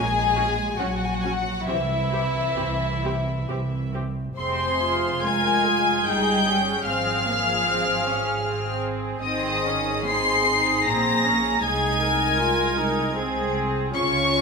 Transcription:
Already playing: double bass section A#1, cello section G#3, violin section G#4 G#5
0.36 viola section C#4 F#4
0.78 double bass section A#1, cello section F#3, viola section C#4 F#4, violin section F#4 F#5
0.88 violin section G#5
0.97 violin section F#5
1.05 violin section G#5
1.15 violin section F#5
1.22 viola section C#4 F#4, violin section G#5
1.32 violin section F#5
1.67 double bass section C2, cello section E3, viola section C4 G4, violin section E4 E5
2.11 viola section C4 G4
2.56 double bass section C2, viola section C4 G4
3.04 viola section C4 G4
3.48 double bass section C2, viola section C4 G4
3.94 viola section C4 G4
4.37 double bass section F1, cello section C3, viola section C4 G#4, violin section C5 C6
4.83 viola section F4
5.24 cello section G#3, viola section A#4, violin section G#5 G#6
5.68 viola section G#4
6.06 double bass section G1, cello section G3, viola section D#4, violin section G5 G6
6.47 viola section C#4
6.86 double bass section G#1, cello section F3, viola section C4 G#4, violin section F5 F6
7.26 viola section A#3
7.65 viola section C4
8.05 viola section C#4
8.43 viola section C4
9.22 double bass section G#1, cello section D#3, viola section C4 G#4, violin section D#5 D#6
9.66 viola section C#4
10.06 cello section C4, viola section D#4, violin section C6 C7
10.49 viola section D#4
10.87 double bass section A#1, cello section A#3, viola section C4, violin section A#5 A#6
11.26 viola section C#4
11.62 double bass section C2, cello section G#3, viola section D#4 G#4, violin section G#5 G#6
12.01 viola section A#4
12.38 viola section F4
12.76 viola section D#4
13.16 viola section C4 G#4
13.95 double bass section C#2, cello section C#3, viola section C#4 F4, violin section C#5 C#6

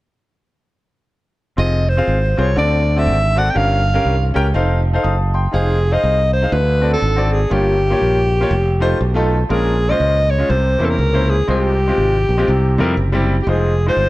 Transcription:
1.57 fingered electric bass F1, grand piano C4 F4 G#4 D#5, alto saxophone D#5
1.89 alto saxophone C5
1.97 grand piano C4 F4 G#4 F5
2.08 fingered electric bass G#1
2.37 fingered electric bass C2, grand piano C4 F4 G#4 C5, alto saxophone C#5
2.56 fingered electric bass D2, grand piano D3 C4 F#4 A4 D5, alto saxophone D5
2.96 grand piano C4 F#4 A4 D5, alto saxophone E5
3.06 fingered electric bass G#1
3.36 grand piano C4 F#4 A4 D5, alto saxophone F#5
3.50 alto saxophone G5
3.54 fingered electric bass G1, grand piano G2 C#4 G4 A#4 F5, alto saxophone F5
3.94 grand piano C#4 G4 A#4 F5
4.05 fingered electric bass C2
4.34 fingered electric bass C#2, grand piano C#4 G4 A#4 G5
4.54 fingered electric bass F1, grand piano D#4 A4 C5 F5
4.93 grand piano D#4 A4 C5 F5
5.03 fingered electric bass F#1, grand piano A5 D#6
5.34 grand piano G5 C6
5.51 fingered electric bass F1, grand piano D#4 G#4 C5 F5, alto saxophone G#4
5.92 grand piano D#4 G#4 C5 F5, alto saxophone D#5
6.04 fingered electric bass C2
6.33 alto saxophone C5
6.42 grand piano D#4 G#4 C5 F5
6.52 fingered electric bass D2, grand piano D3, alto saxophone B4
6.81 grand piano C4 F#4 A4 D5
6.93 alto saxophone A4
7.02 fingered electric bass G#1
7.16 grand piano C4 F#4 A4 D5
7.33 alto saxophone G#4
7.50 fingered electric bass G1, grand piano G2 A#3 F4 G4 C#5, alto saxophone G4
7.90 grand piano A#3 F4 G4 C#5
8.02 fingered electric bass A#1
8.41 grand piano A#3 F4 G4 C#5
8.51 fingered electric bass F1
8.80 grand piano A3 D#4 F4 C5
9.01 fingered electric bass B1
9.14 grand piano A3 D#4 F4 A4
9.49 fingered electric bass A#1, grand piano A#2 G#3 C#4 F4 A#4, alto saxophone G#4
9.89 grand piano G#3 C#4 F4 C5, alto saxophone D#5
10.00 fingered electric bass C#2
10.31 alto saxophone C#5
10.38 grand piano G#3 C#4 F4 G#4
10.49 fingered electric bass C2, grand piano C3, alto saxophone C5
10.79 fingered electric bass E2, grand piano A#3 C#4 E4 C5
10.85 alto saxophone A4
10.90 alto saxophone A#4
10.98 fingered electric bass C#2
11.13 grand piano A#3 C#4 E4 C5
11.30 alto saxophone G#4
11.48 fingered electric bass C2, grand piano C3 G#3 C4 F4 C5, alto saxophone G#4
11.61 alto saxophone G4
11.88 grand piano G#3 C4 F4 G4
11.98 fingered electric bass G#1
12.29 fingered electric bass A#1
12.38 grand piano G#3 C4 F4 G4
12.48 fingered electric bass C2, grand piano C3
12.78 fingered electric bass F2, grand piano G3 C4 E4 A#4
12.97 fingered electric bass F#1
13.12 grand piano G3 C4 E4 G4
13.42 alto saxophone G4
13.47 fingered electric bass F1, grand piano G#3 D#4 F4 C5, alto saxophone G#4
13.87 grand piano G#3 D#4 F4 C5, alto saxophone C5
13.97 fingered electric bass G1

